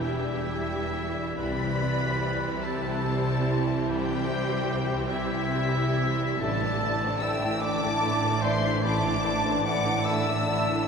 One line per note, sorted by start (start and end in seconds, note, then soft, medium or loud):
0.00 1.34 E1 medium
0.00 1.33 E2 medium
0.00 1.35 E2 medium
0.00 1.33 E3 medium
0.00 1.33 G3 medium
0.00 1.34 D4 medium
0.00 0.70 E4 medium
0.00 1.33 E4 medium
0.00 1.34 E4 medium
0.00 1.41 F#4 soft
0.00 0.02 G4 medium
0.00 0.38 G4 medium
0.00 1.35 E5 loud
0.04 1.09 G4 medium
0.24 0.61 D5 medium
0.47 0.84 G4 medium
0.70 1.07 E4 medium
0.93 1.29 G4 medium
1.14 1.37 D5 medium
1.37 6.37 C2 medium
1.37 3.83 C2 medium
1.37 6.37 C3 medium
1.37 6.37 E3 medium
1.37 6.37 G3 medium
1.37 6.38 G3 medium
1.37 6.37 C4 medium
1.37 6.37 E4 medium
1.37 6.38 E4 medium
1.37 2.65 B4 loud
1.37 2.61 D5 loud
1.37 2.61 B5 loud
1.60 1.93 E4 medium
1.81 2.14 G4 medium
2.01 2.22 F#4 medium
2.21 2.55 G4 medium
2.43 2.76 E4 medium
2.63 2.96 G4 medium
2.63 3.61 A4 medium
2.63 3.88 C5 medium
2.63 3.87 A5 loud
2.82 3.16 E5 medium
3.05 3.38 G4 medium
3.26 3.59 E4 medium
3.47 3.79 G4 medium
3.67 4.00 E5 medium
3.88 6.37 C2 medium
3.88 5.11 G4 loud
3.88 5.08 C5 loud
3.88 5.10 G5 loud
4.09 4.40 E4 medium
4.28 4.60 G4 medium
4.48 4.68 F#4 medium
4.68 5.01 G4 medium
4.90 5.22 E4 medium
5.08 6.40 E4 loud
5.08 6.10 G4 loud
5.08 5.44 G4 medium
5.08 6.37 E5 loud
5.32 5.66 E5 medium
5.54 5.89 G4 medium
5.75 6.11 E4 medium
5.97 6.32 G4 medium
6.21 6.42 E5 medium
6.39 10.88 A1 medium
6.39 10.88 A2 loud
6.39 6.60 D3 medium
6.39 10.88 E3 medium
6.39 6.60 A3 medium
6.39 10.88 D4 medium
6.39 6.61 E4 medium
6.39 7.24 A4 loud
6.39 7.21 D5 loud
6.39 7.21 A5 loud
6.43 8.81 A1 medium
6.62 6.81 D3 medium
6.62 6.82 E3 medium
6.62 6.82 D4 medium
6.62 6.96 E4 medium
6.82 7.01 D3 medium
6.82 7.02 A3 medium
6.82 7.02 E4 medium
6.82 7.15 D5 medium
7.01 7.21 D3 medium
7.01 7.23 E3 medium
7.01 7.22 D4 medium
7.01 7.23 C5 medium
7.20 7.41 D3 medium
7.20 7.41 A3 medium
7.20 7.40 E4 medium
7.20 7.63 E5 loud
7.20 7.62 G5 loud
7.20 7.61 E6 loud
7.25 7.55 D5 medium
7.41 7.61 D3 medium
7.41 7.62 E3 medium
7.41 7.61 D4 medium
7.41 7.75 E4 medium
7.60 7.81 D3 medium
7.60 7.82 A3 medium
7.60 7.81 E4 medium
7.60 8.43 D5 loud
7.60 8.42 A5 loud
7.60 8.43 D6 loud
7.64 7.95 D5 medium
7.79 8.01 D3 medium
7.79 8.02 E3 medium
7.79 8.01 D4 medium
7.79 8.15 E5 medium
8.01 8.21 D3 medium
8.01 8.21 A3 medium
8.01 8.21 E4 medium
8.01 8.36 D5 medium
8.20 8.43 D3 medium
8.20 8.44 E3 medium
8.20 8.42 D4 medium
8.24 8.56 E4 medium
8.41 8.63 D3 medium
8.41 8.64 A3 medium
8.41 8.63 E4 medium
8.41 8.84 C5 loud
8.41 8.83 E5 loud
8.41 8.84 C6 loud
8.45 8.77 D5 medium
8.61 8.83 D3 medium
8.61 8.84 E3 medium
8.61 8.83 D4 medium
8.61 8.96 E5 medium
8.82 10.88 A1 loud
8.82 9.03 D3 medium
8.82 9.03 A3 medium
8.82 9.02 E4 medium
8.82 9.64 D5 loud
8.82 9.63 A5 loud
8.82 9.64 D6 loud
9.03 9.22 D3 medium
9.03 9.24 E3 medium
9.03 9.24 D4 medium
9.03 9.37 E4 medium
9.23 9.42 D3 medium
9.23 9.44 A3 medium
9.23 9.45 E4 medium
9.23 9.57 D5 medium
9.43 9.64 D3 medium
9.43 9.65 E3 medium
9.43 9.65 D4 medium
9.43 9.65 C5 medium
9.64 9.84 D3 medium
9.64 9.84 A3 medium
9.64 9.85 E4 medium
9.64 10.07 D5 loud
9.64 9.98 D5 medium
9.64 10.07 F#5 loud
9.64 10.06 D6 loud
9.85 10.06 D3 medium
9.85 10.07 E3 medium
9.85 10.07 D4 medium
9.85 10.19 E4 medium
10.05 10.27 D3 medium
10.05 10.28 A3 medium
10.05 10.28 E4 medium
10.05 10.41 D5 medium
10.05 10.88 E5 loud
10.05 10.88 A5 loud
10.05 10.88 E6 loud
10.27 10.49 D3 medium
10.27 10.50 E3 medium
10.27 10.50 D4 medium
10.27 10.62 E5 medium
10.47 10.70 D3 medium
10.47 10.69 A3 medium
10.47 10.70 E4 medium
10.47 10.83 D5 medium
10.69 10.88 D3 medium
10.69 10.88 E3 medium
10.69 10.88 E4 medium
10.74 10.88 D4 medium